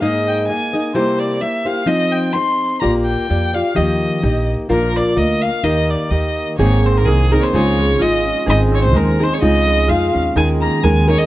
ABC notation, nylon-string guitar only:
X:1
M:2/4
L:1/8
Q:"Swing" 1/4=128
K:Eb
V:1 name="Nylon-string guitar"
[A,,A,B,EAe]2 [B,EAe] [B,EAe] | [C,G,B,=EGc]2 [B,EGc] [B,EGc] | [F,CEAc]2 [CEAc]2 | [B,FGd]2 [B,FGd] [FGd] |
[E,F,B,EGe]2 [B,EGe]2 | [B,,F,B,DFB]2 [B,DFB]2 | [E,B,EGB]2 [B,EGB]2 | [K:Ab] [A,,E,B,CEA]2 [B,CEA] [B,CEA] |
[D,A,EFA]2 [A,EFA]2 | [A,,E,A,CEA]2 [A,CEA] [A,CEA] | [D,A,EFA]2 [A,EFA]2 | [E,A,EAB]2 [A,EAB] [EAB] |]